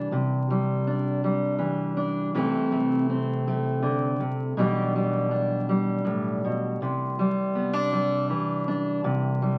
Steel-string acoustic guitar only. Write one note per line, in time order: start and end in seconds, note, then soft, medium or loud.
0.00 0.90 E3 medium
0.00 0.49 G3 medium
0.12 1.61 C3 medium
0.50 1.23 G3 medium
0.87 1.96 D4 medium
1.24 2.35 G3 medium
1.59 2.35 E3 medium
1.97 2.30 D4 medium
2.34 4.19 C3 medium
2.34 3.82 E3 medium
2.34 2.71 A3 medium
2.34 3.08 C4 medium
2.34 4.60 E4 medium
2.72 3.46 A3 medium
3.10 4.53 C4 medium
3.48 4.53 A3 medium
3.82 4.20 D3 medium
4.20 4.57 C3 medium
4.57 6.04 B2 medium
4.57 7.76 E3 medium
4.57 4.95 G3 medium
4.57 5.31 D4 medium
4.57 8.10 G4 medium
4.96 5.69 G3 medium
5.31 6.85 D4 medium
5.69 7.19 G3 medium
6.05 6.42 A2 medium
6.44 6.81 B2 medium
6.82 8.30 C3 medium
7.19 7.92 G3 medium
7.55 7.73 B3 soft
7.73 8.67 D4 soft
7.93 9.41 G3 medium
8.30 9.58 E3 medium
8.68 9.00 D4 medium
9.04 9.58 C3 medium
9.42 9.58 G3 medium